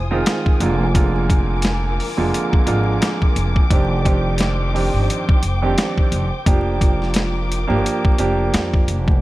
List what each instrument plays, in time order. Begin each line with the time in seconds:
Already playing: upright bass F1, string section F4 C5 G#5 D#6
0.11 grand piano D#3 G#3 C4 F4
0.26 snare, closed hi-hat
0.46 kick
0.60 upright bass F1, grand piano F2 D3 G#3 A#3 F4, string section A#4 D6, closed hi-hat
0.94 grand piano F2 D3 G#3 A#3 F4, kick, closed hi-hat
1.30 kick, closed hi-hat
1.62 snare, closed hi-hat
2.00 open hi-hat
2.17 upright bass F1, grand piano F2 D3 G#3 A#3 F4
2.34 closed hi-hat
2.53 kick
2.66 upright bass G#1, grand piano F2 D3 G#3 A#3 F4, closed hi-hat
3.02 snare, closed hi-hat
3.22 kick
3.36 upright bass F1, closed hi-hat
3.56 kick
3.70 upright bass F1, grand piano F2 D#3 C4 D4 G4, string section D#3 C5 G5, kick, closed hi-hat
4.05 grand piano F2 D#3 C4 D4 G4, kick, closed hi-hat
4.38 snare, closed hi-hat
4.74 grand piano F2 D#3 C4 D4 G4, open hi-hat
4.94 upright bass G1
5.10 closed hi-hat
5.29 kick
5.43 upright bass F1, closed hi-hat
5.62 grand piano F2 D#3 C4 D4 G4
5.78 snare, closed hi-hat
5.98 kick
6.12 upright bass F1, closed hi-hat
6.46 upright bass F1, grand piano F3 A#3 D4 G4, string section F4 A#4 D6, kick, closed hi-hat
6.81 kick, closed hi-hat
7.02 snare
7.14 snare, closed hi-hat
7.52 closed hi-hat
7.67 upright bass G1, grand piano F3 A#3 D4 G4
7.86 closed hi-hat
8.05 kick
8.18 upright bass F1, grand piano F3 A#3 D4 G4, closed hi-hat
8.54 upright bass F2, snare, closed hi-hat
8.74 kick
8.88 upright bass F1, closed hi-hat
9.08 kick